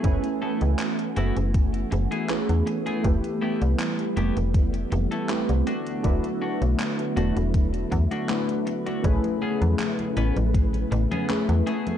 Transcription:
Already playing: E3 A3 B3 E4 F#4 G#4
0.03 F#1 A3 C#4 E4 B4 G#5, kick, closed hi-hat
0.24 closed hi-hat
0.42 A3 B3 E4 A4
0.61 C#2, closed hi-hat
0.79 clap, closed hi-hat
0.99 closed hi-hat
1.16 F#1 A3 B3 E4 F#4, closed hi-hat
1.37 F#1, closed hi-hat
1.54 kick, closed hi-hat
1.74 closed hi-hat
1.92 F#1, muted clean electric guitar stroke, closed hi-hat
2.11 A3 B3 E4 G#4, closed hi-hat
2.29 A3 C#4 E4 G#4 B4, clap, closed hi-hat
2.49 E2, closed hi-hat
2.67 muted clean electric guitar stroke, closed hi-hat
2.86 A3 B3 E4 G#4, closed hi-hat
3.03 F1 G3 A3 E4 G4 B4, kick, closed hi-hat
3.24 closed hi-hat
3.42 A3 B3 E4 G4
3.62 C2, closed hi-hat
3.80 clap, closed hi-hat
3.99 closed hi-hat
4.17 F1 A3 B3 E4 G4, closed hi-hat
4.37 F1, closed hi-hat
4.54 kick, closed hi-hat
4.74 closed hi-hat
4.92 F1, muted clean electric guitar stroke, closed hi-hat
5.11 A3 B3 E4 A4, closed hi-hat
5.29 A3 C4 E4 G4 B4, clap, closed hi-hat
5.49 C2, closed hi-hat
5.66 D3 F#3 A3 D4 E4 F#4, closed hi-hat
5.87 closed hi-hat
6.03 E1 A3 D4 E4 F#4 B4, kick, closed hi-hat
6.24 closed hi-hat
6.42 A3 D4 F#4
6.62 B1, closed hi-hat
6.80 clap, closed hi-hat
6.99 closed hi-hat
7.16 E1 A3 D4 F#4, closed hi-hat
7.37 E1, closed hi-hat
7.54 kick, closed hi-hat
7.74 closed hi-hat
7.92 E2, muted clean electric guitar stroke, kick, closed hi-hat
8.11 A3 D4 F#4, closed hi-hat
8.29 A3 D4 E4 F#4 B4, clap, closed hi-hat
8.49 closed hi-hat
8.67 muted clean electric guitar stroke, closed hi-hat
8.86 A3 D4 F#4, closed hi-hat
9.03 A1 C#3 A3 C#4 E4 G#4 B4, kick, closed hi-hat, high conga
9.24 closed hi-hat, high conga
9.42 B3 C#4 G#4
9.62 E2, closed hi-hat, high conga
9.79 clap, closed hi-hat, high conga
9.99 closed hi-hat, high conga
10.17 A1 B3 C#4 B4, closed hi-hat
10.37 A1, closed hi-hat, high conga
10.54 kick, closed hi-hat, high conga
10.74 closed hi-hat, high conga
10.92 A1, muted clean electric guitar stroke, closed hi-hat
11.11 B3 C#4 G#4, closed hi-hat, high conga
11.29 A3 C#4 E4 G#4 B4, clap, closed hi-hat, high conga
11.49 E2, closed hi-hat, high conga
11.66 E3 A3 B3 E4 F#4 G#4, closed hi-hat
11.87 closed hi-hat, high conga

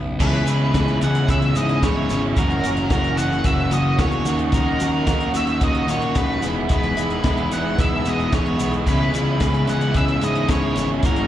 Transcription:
Already playing: B1 F#2 C#3 F#3 B3 C#4 F#4
0.19 C#2 C#3 E3 G#3 B3 C#4 E4 G#4 B4 C#5 G#5 B5 E6, kick, crash, shaker
0.47 C#2 C#3 E3 G#3 B3 C#4 E4 G#4, closed hi-hat, shaker
0.74 C#2 C#3 E3 G#3 B3 C#4 E4 G#4, kick, snare, closed hi-hat, shaker
0.88 closed hi-hat
1.01 C#2 C#3 E3 G#3 B3 C#4 E4 G#4 F#5, closed hi-hat, shaker
1.15 closed hi-hat, shaker
1.28 C#2 C#3 E3 G#3 B3 C#4 E4 G#4 E5, kick, closed hi-hat, shaker
1.42 closed hi-hat
1.55 G#2 C#3 E3 G#3 B3 C#4 E4 G#4 D#5, closed hi-hat, shaker
1.69 closed hi-hat
1.83 G#2 C#3 E3 G#3 B3 C#4 E4 G#4 C#5, kick, snare, closed hi-hat, shaker
2.09 G#1 C#3 E3 G#3 B3 C#4 E4 G#4, closed hi-hat, shaker
2.37 F#1 F#2 C#3 E3 A#3 C#4 F#4 A#4 F#5 A#5, kick, closed hi-hat, shaker
2.50 closed hi-hat
2.63 F#1 F#2 C#3 E3 A#3 C#4 F#4, closed hi-hat, shaker
2.77 closed hi-hat
2.90 F#1 F#2 C#3 E3 A#3 C#4 F#4 A#4, kick, snare, closed hi-hat, shaker
3.04 closed hi-hat
3.17 F#2 C#3 E3 A#3 C#4 F#4 F#5, closed hi-hat, shaker
3.32 shaker
3.44 F#1 F#2 C#3 E3 A#3 C#4 F#4 E5, kick, closed hi-hat, shaker
3.71 F#1 F#2 C#3 E3 A#3 C#4 F#4 D#5, closed hi-hat, shaker
3.99 E2 F#2 C#3 E3 A#3 C#4 F#4 C#5, kick, snare, closed hi-hat, shaker
4.12 closed hi-hat
4.25 D#2 D#3 F#3 A#3 C#4 D#4 F#4 A#4 A#5 D#6, closed hi-hat, shaker
4.39 closed hi-hat
4.52 D#2 D#3 F#3 A#3 C#4 D#4 F#4 A#4, kick, closed hi-hat, shaker
4.80 D#2 D#3 F#3 A#3 C#4 D#4 F#4 A#4, closed hi-hat, shaker
5.07 D#2 D#3 F#3 A#3 C#4 D#4 F#4 A#4, kick, snare, closed hi-hat, shaker
5.20 closed hi-hat
5.34 D#2 D#3 F#3 A#3 C#4 D#4 F#4 A#4 E5, closed hi-hat, shaker
5.47 closed hi-hat, shaker
5.61 D#2 D#3 F#3 A#3 C#4 D#4 F#4 A#4 D#5, kick, closed hi-hat, shaker
5.75 closed hi-hat
5.88 A#2 D#3 F#3 A#3 C#4 D#4 F#4 A#4 C#5, closed hi-hat, shaker
6.02 closed hi-hat
6.15 D#2 D#3 F#3 A#3 C#4 D#4 F#4 A#4 B4, kick, snare, closed hi-hat, shaker
6.42 E1 E2 B2 E3 G#3 B3 D#4 E4 G#4 B4 G#5 E6, closed hi-hat, shaker
6.69 E1 E2 B2 E3 G#3 B3 D#4 E4 G#4 B4, kick, closed hi-hat, shaker
6.83 closed hi-hat
6.97 E1 E2 B2 E3 G#3 B3 D#4 E4 G#4, closed hi-hat, shaker
7.10 closed hi-hat
7.24 E1 E2 B2 E3 G#3 B3 D#4 E4 G#4, kick, snare, closed hi-hat, shaker
7.37 closed hi-hat
7.51 E2 B2 E3 G#3 B3 D#4 E4 G#4 F#5, closed hi-hat, shaker
7.78 E1 E2 B2 E3 G#3 B3 D#4 E4 G#4 E5, kick, closed hi-hat, shaker
8.05 E1 E2 B2 E3 G#3 B3 D#4 E4 G#4, closed hi-hat, shaker
8.09 D#5
8.20 shaker
8.32 E1 E2 B2 E3 G#3 B3 D#4 E4 G#4 C#5, kick, snare, closed hi-hat, shaker
8.46 closed hi-hat
8.59 B1 E2 B2 E3 G#3 B3 D#4 E4 G#4, closed hi-hat, shaker
8.73 closed hi-hat, shaker
8.85 C#2 C#3 E3 G#3 B3 C#4 E4 G#4 B4 C#5, kick, crash, shaker
9.13 C#2 C#3 E3 G#3 B3 C#4 E4 G#4, closed hi-hat, shaker
9.40 C#2 C#3 E3 G#3 B3 C#4 E4 G#4, kick, snare, closed hi-hat, shaker
9.54 closed hi-hat
9.67 C#2 C#3 E3 G#3 B3 C#4 E4 G#4 F#5, closed hi-hat, shaker
9.81 closed hi-hat, shaker
9.94 C#2 C#3 E3 G#3 B3 C#4 E4 G#4 E5, kick, closed hi-hat, shaker
10.08 closed hi-hat
10.21 G#2 C#3 E3 G#3 B3 C#4 E4 G#4 D#5, closed hi-hat, shaker
10.35 closed hi-hat
10.49 G#2 C#3 E3 G#3 B3 C#4 E4 G#4 C#5, kick, snare, closed hi-hat, shaker
10.76 G#1 C#3 E3 G#3 B3 C#4 E4 G#4, closed hi-hat, shaker
11.03 F#1 F#2 C#3 E3 A#3 C#4 E4 F#4 A#4 F#5 A#5, kick, closed hi-hat, shaker
11.16 closed hi-hat

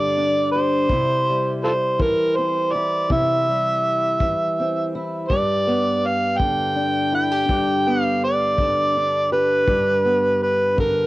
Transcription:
Already playing: G2 D3 G3 D4 G4 D5
0.17 D4
0.52 C5
0.56 G4
0.90 C3 E4, kick
1.30 G3
1.64 F4 A4 C5
1.99 E3 A#4, kick
2.36 C4 C5
2.72 E4 D5
3.10 C3 E4 E5, kick
3.49 G3
4.20 E3, kick
4.59 C4
4.95 E4
5.29 G2 G4 D5, kick
5.67 B3
6.06 F5
6.38 D3 G5, kick
6.76 D4
7.12 E4 G5
7.31 G4
7.49 G2 G4, kick
7.87 B3 F5
8.24 D5
8.58 D3, kick
8.97 D4
9.32 G4 B4
9.68 G2 G4, kick
10.05 B3
10.42 B4
10.77 D3 A#4, kick

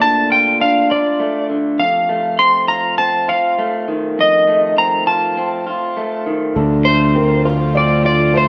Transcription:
Already playing: A#2 D3 A3 F4
0.00 D4 A5
0.30 F4 G5
0.60 D4 F5
0.90 F4 D5
1.20 A3
1.50 D3
1.79 F2 F5
2.09 A3
2.39 C4 C6
2.68 F4 A#5
2.98 C4 A5
3.28 F4 F5
3.59 A3
3.88 D#3
4.18 F2 D#5
4.47 A3
4.77 C4 A#5
5.07 F4 A5
5.37 C4
5.67 F4
5.97 A3
6.26 D#3
6.56 D2 D3 F3 A3 C4 F4 A4
6.85 A3 C5
7.15 C4 A#4
7.45 F4 C5
7.75 C4 D5
8.05 F4 D5
8.34 A3 C5

